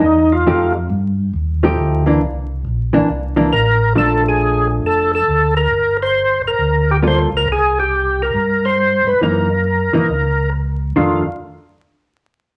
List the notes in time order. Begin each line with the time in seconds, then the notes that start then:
Already playing: D#4
0.02 E2
0.32 F4
0.46 F2 F3 A3 D#4 G4
0.90 G2
1.34 D#2
1.63 F3 A3 D#4 G4
1.77 D2
2.06 E3 A#3 D4
2.21 C2
2.65 A#1
2.93 A#1 E3 A#3 D4
3.09 C2
3.36 E3 A#3 D4
3.52 A1 A#4
3.95 A#1 F3 A3 D4 A4
4.29 G#4
4.83 F1 A4
5.15 A4
5.27 D2
5.57 A#4
5.71 G1
6.02 C5
6.43 G1
6.47 A#4
6.58 D2
6.91 G4
7.02 G3 A#3 F4 A4
7.07 C5
7.32 C#2
7.37 A#4
7.46 C2
7.52 G#4
7.80 G4
8.22 A#4
8.34 G2
8.65 C5
9.05 G2 B4
9.21 F#2 E3 A#3 D#4 A#4
9.93 F#2 E3 A#3 D#4
10.09 C#2
10.96 F2 D#3 A3 D4 F4